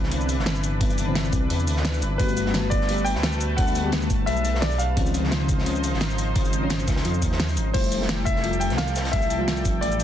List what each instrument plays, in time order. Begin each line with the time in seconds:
Already playing: detuned saw bass C2, fm electric piano C3 D3 E3 B3, analog synth pad E3 D4 B4
0.03 snare
0.10 fm electric piano C3 D3 E3 C4, closed hi-hat
0.21 shaker
0.29 closed hi-hat, shaker
0.38 detuned saw bass G1, snare
0.46 snare, closed hi-hat
0.55 shaker
0.63 closed hi-hat, shaker
0.80 fm electric piano C3 D3 E3 B3, kick, closed hi-hat
0.90 closed hi-hat, shaker
0.98 closed hi-hat, shaker
1.06 fm electric piano C3 D3 E3 C4
1.15 snare, closed hi-hat
1.25 shaker
1.32 detuned saw bass C2, kick, closed hi-hat, shaker
1.50 detuned saw bass E2, closed hi-hat
1.59 shaker
1.67 detuned saw bass D2, closed hi-hat, shaker
1.76 snare
1.85 snare, closed hi-hat, open hi-hat
1.94 shaker
2.02 detuned saw bass G1, closed hi-hat, shaker
2.18 detuned saw bass G1, fm electric piano G3 A3 B3 F#4, analog synth pad A3 A5, grand piano B4, kick, closed hi-hat
2.29 closed hi-hat, shaker
2.37 closed hi-hat, shaker
2.45 fm electric piano G3 A3 B3 F#4, snare
2.54 snare, closed hi-hat
2.70 grand piano D5, kick, closed hi-hat, shaker
2.81 snare
2.88 fm electric piano G3 A3 B3 G4, closed hi-hat
2.98 shaker
3.05 grand piano G5, closed hi-hat, shaker
3.15 detuned saw bass D2, snare
3.23 snare, closed hi-hat
3.33 shaker
3.40 closed hi-hat, shaker
3.57 fm electric piano G3 A3 B3 F#4, grand piano F#5, kick, closed hi-hat
3.67 closed hi-hat, shaker
3.75 closed hi-hat, shaker
3.83 fm electric piano G3 A3 B3 G4
3.92 snare, closed hi-hat
4.02 shaker
4.10 detuned saw bass G1, kick, closed hi-hat, shaker
4.26 detuned saw bass B1, grand piano E5, closed hi-hat
4.37 shaker
4.45 closed hi-hat, shaker
4.55 snare
4.61 grand piano D5, snare, closed hi-hat, open hi-hat
4.71 shaker
4.78 grand piano F5, closed hi-hat, shaker
4.96 detuned saw bass C#2, fm electric piano C#3 D#3 F3 C4, analog synth pad F3 D#4 C5, kick, closed hi-hat
5.06 closed hi-hat, shaker
5.14 closed hi-hat, shaker
5.22 fm electric piano C#3 D#3 F3 C4, snare
5.31 snare, closed hi-hat
5.48 kick, closed hi-hat, shaker
5.58 snare
5.65 fm electric piano C#3 D#3 F3 C#4, closed hi-hat
5.76 shaker
5.84 closed hi-hat, shaker
5.93 detuned saw bass G#1, snare
6.01 snare, closed hi-hat
6.10 shaker
6.18 closed hi-hat, shaker
6.35 fm electric piano C#3 D#3 F3 C4, kick, closed hi-hat
6.45 closed hi-hat, shaker
6.53 closed hi-hat, shaker
6.61 fm electric piano C#3 D#3 F3 C#4
6.70 snare, closed hi-hat
6.80 shaker
6.88 detuned saw bass C#2, kick, snare, closed hi-hat, shaker
6.96 snare, closed hi-hat
7.05 detuned saw bass F2, closed hi-hat
7.14 shaker
7.22 detuned saw bass D#2, kick, closed hi-hat, shaker
7.32 snare
7.40 snare, closed hi-hat, open hi-hat
7.49 shaker
7.57 detuned saw bass G#1, closed hi-hat, shaker
7.74 detuned saw bass F1, fm electric piano F3 G3 A3 E4, analog synth pad G3 A4 G5, grand piano C5, kick, closed hi-hat, crash
7.83 closed hi-hat, shaker
7.92 closed hi-hat, shaker
8.00 fm electric piano F3 G3 A3 E4, snare
8.09 snare, closed hi-hat
8.25 grand piano E5, kick, closed hi-hat, shaker
8.36 snare
8.43 fm electric piano F3 G3 A3 F4, closed hi-hat
8.53 closed hi-hat, shaker
8.60 grand piano G5, closed hi-hat, shaker
8.70 detuned saw bass C2, snare, closed hi-hat
8.77 grand piano F5, snare, closed hi-hat
8.88 closed hi-hat, shaker
8.96 snare, closed hi-hat, shaker
9.05 snare, closed hi-hat
9.12 fm electric piano F3 G3 A3 E4, grand piano E5, kick, closed hi-hat
9.22 closed hi-hat, shaker
9.30 closed hi-hat, shaker
9.38 fm electric piano F3 G3 A3 F4
9.48 snare, closed hi-hat
9.57 shaker
9.65 detuned saw bass F1, kick, closed hi-hat, shaker
9.81 detuned saw bass A1, grand piano D5, closed hi-hat
9.92 closed hi-hat, shaker
9.99 closed hi-hat, shaker